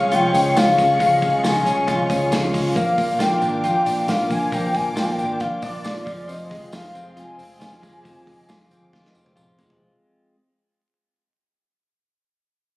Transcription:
Already playing: C2 G#3 C#4 F4 G#4 F5 C#6
0.12 C#3 F3 G#3 C#4 F4 G5, hi-hat pedal, open hi-hat
0.34 C#2 G#3 C#4 F4, hi-hat pedal, open hi-hat, tambourine
0.56 C#2 F3 G#3 C#4 F4 F5, snare, hi-hat pedal, open hi-hat, tambourine
0.78 C#2 G#3 C#4 F4, kick, hi-hat pedal, open hi-hat, tambourine
0.99 C#2 C#3 F3 G#3 C#4 F4 F5, kick, hi-hat pedal, open hi-hat, tambourine
1.21 G#3 C#4 F4, kick, hi-hat pedal, open hi-hat, tambourine
1.44 C#2 F3 G#3 C#4 F4 G#5, snare, hi-hat pedal, open hi-hat, tambourine
1.65 C2 G#3 C#4 F4, hi-hat pedal, open hi-hat, tambourine
1.87 C#3 F3 G#3 C#4 F4, kick, hi-hat pedal, open hi-hat, tambourine
2.09 C#2 G#3 C#4 F4, kick, hi-hat pedal, open hi-hat, tambourine
2.31 C#2 F3 G#3 C#4 F4, snare, hi-hat pedal, open hi-hat, tambourine
2.53 C#2 G#3 C#4 F4, kick, hi-hat pedal, open hi-hat, tambourine
2.75 A#1 A#2 F3 A#3 D4 F4 A#4 F5 D6, kick, hi-hat pedal, open hi-hat, tambourine
2.97 A#3 D4 F4, kick, hi-hat pedal, open hi-hat, tambourine
3.19 A#1 F3 A#3 D4 F4 G5, snare, hi-hat pedal, open hi-hat, tambourine
3.42 G#1 A#3 D4 F4, hi-hat pedal, open hi-hat, tambourine
3.63 A#2 F3 A#3 D4 F4 G5, hi-hat pedal, open hi-hat, tambourine
3.86 A#1 A#3 D4 F4, hi-hat pedal, open hi-hat, tambourine
4.08 A#1 F3 A#3 D4 F4 F5, snare, hi-hat pedal, open hi-hat, tambourine
4.30 A#1 A#3 D4 F4 G#5, kick, hi-hat pedal, open hi-hat, tambourine
4.52 A#1 A#2 F3 A#3 D4 F4 G5, kick, hi-hat pedal, open hi-hat, tambourine
4.74 A#3 D4 F4 G#5, kick, hi-hat pedal, open hi-hat, tambourine
4.96 A#1 F3 A#3 D4 F4 G5, snare, hi-hat pedal, open hi-hat, tambourine
5.05 G#5
5.11 G5
5.18 G#1 A#3 D4 F4, hi-hat pedal, open hi-hat, tambourine
5.40 A#2 F3 A#3 D4 F4 F5, kick, hi-hat pedal, open hi-hat
5.62 A#1 A#3 D4 F4 D5, kick, hi-hat pedal, open hi-hat, tambourine
5.84 A#1 F3 A#3 D4 F4, snare, hi-hat pedal, open hi-hat, tambourine
6.05 F1 F3 G#3 C4 F4 G#4 F5 C6, kick, hi-hat pedal, open hi-hat, tambourine
6.29 F2 C3 F3 G#3 C4 F4 D#5, hi-hat pedal, open hi-hat, tambourine
6.51 F3 G#3 C4 F4, kick, hi-hat pedal, open hi-hat, tambourine
6.72 F1 F3 G#3 C4 F4 F5, snare, hi-hat pedal, open hi-hat, tambourine
6.95 F1 F3 G#3 C4 F4, hi-hat pedal, open hi-hat, tambourine
7.16 F2 C3 F3 G#3 C4 F4 G#5, hi-hat pedal, open hi-hat, tambourine
7.38 F1 F3 G#3 C4 F4, hi-hat pedal, open hi-hat, tambourine
7.59 F1 F3 G#3 C4 F4, snare, hi-hat pedal, open hi-hat, tambourine
7.82 F1 F3 G#3 C4 F4 D6, kick, hi-hat pedal, open hi-hat, tambourine
8.04 F1 F2 C3 F3 G#3 C4 F4, kick, hi-hat pedal, open hi-hat, tambourine
8.25 F3 G#3 C4 F4, kick, hi-hat pedal, open hi-hat
8.48 F1 F3 G#3 C4 F4, snare, hi-hat pedal, open hi-hat, tambourine
8.70 G1 F3 G#3 C4 F4, hi-hat pedal, open hi-hat, tambourine
8.93 F2 C3 F3 G#3 C4 F4, kick, snare
9.05 snare
9.15 F1 F3 G#3 C4 F4, tambourine
9.26 high tom
9.36 F1 F3 G#3 C4 F4, mid tom, tambourine
9.58 F1 F3 G#3 C4 F4, floor tom, tambourine
9.70 floor tom

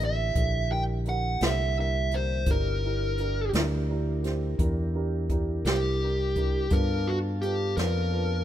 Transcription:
Already playing: A1 D3 A#3 D4 E4 G4
0.00 E4 G4 A#4, closed hi-hat
0.05 E5
0.35 A#1 D4 E4 G4 A4, kick, closed hi-hat
0.70 D4 E4 G4 A#4 G5
1.05 D4 E4 G4 A#4, closed hi-hat
1.09 F#5
1.41 C2 D4 E4 G4 A4, snare, closed hi-hat
1.46 E5
1.77 D4 E4 G4 A#4 E5
2.11 D4 E4 G4 A#4 C5, closed hi-hat
2.46 G1 D4 E4 G4 A#4, kick, closed hi-hat
2.50 G4 A#4
2.84 D4 E4 G4 A#4
3.18 D4 E4 G4 A#4, closed hi-hat
3.53 D2 D4 E4 G4 A#4, snare, closed hi-hat
3.88 D4 E4 G4 A#4
4.23 D4 E4 G4 C5, snare, closed hi-hat
4.58 E2 D4 E4 G4 A#4, kick, closed hi-hat
4.94 D4 E4 G4 A#4
5.29 D4 E4 G4 A#4, kick, closed hi-hat
5.64 C2 D4 E4 G4 A#4, snare, closed hi-hat
6.02 D4 E4 G4 A#4
6.35 D4 E4 G4 A#4, kick, closed hi-hat
6.70 G2 B3 D4 F4 A4 A#4 B4 F5 A5, kick, closed hi-hat
7.06 D4 F4 F#4 A4 B4
7.42 D4 F4 G4 A4 B4, closed hi-hat
7.77 F2 D4 F4 A4 A#4 B4, snare, closed hi-hat
8.11 D4 F4 A4 B4

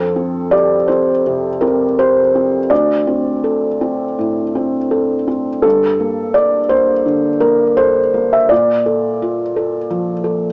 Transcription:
Already playing: F2 A4
0.16 C4
0.51 G4 D5
0.88 C4 C5
1.27 C3
1.61 C4 A#4
1.99 G4 C5
2.35 C4
2.70 D2 D5
3.07 C4
3.44 A4
3.81 C4
4.19 A2
4.55 C4
4.91 A4
5.28 C4
5.62 G2 A4
6.00 A#3
6.34 A4 D5
6.69 A#3 C5
7.06 D3
7.40 A#3 A#4
7.77 A4 C5
8.14 A#3
8.33 E5
8.49 A#2 D5
8.86 A4
9.22 F4
9.56 A4
9.90 F3
10.24 A4

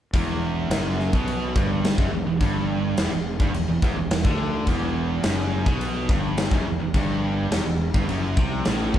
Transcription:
0.13 E1 E2, kick, crash
0.70 F#1 F#2, snare, crash
1.00 snare
1.13 B1 B2, kick
1.28 crash
1.55 G1 G2, kick
1.85 snare, crash
1.98 F#1 F#2, kick
2.12 E1 E2
2.27 E1 E2
2.40 G1 G2, kick, crash
2.97 E1 E2, snare, crash
3.11 E1 E2
3.40 G1 G2, kick
3.54 E1 E2, crash
3.68 E1 E2
3.82 E1 E2, kick, snare
3.97 E1 E2
4.11 E1 E2, snare, crash
4.25 D2 D3, kick
4.67 E1 E2, kick, crash
5.23 F#1 F#2, snare, crash
5.66 B1 B2, kick
5.81 crash
6.09 G1 G2, kick, snare
6.37 snare, crash
6.51 F#1 F#2, kick
6.65 E1 E2
6.79 E1 E2
6.94 G1 G2, kick, crash
7.51 E1 E2, snare, crash
7.65 E1 E2
7.94 G1 G2, kick
8.08 F#1 F#2, crash
8.36 C2 C3, kick
8.65 A1 A2, snare, crash
8.94 E1 E2, kick

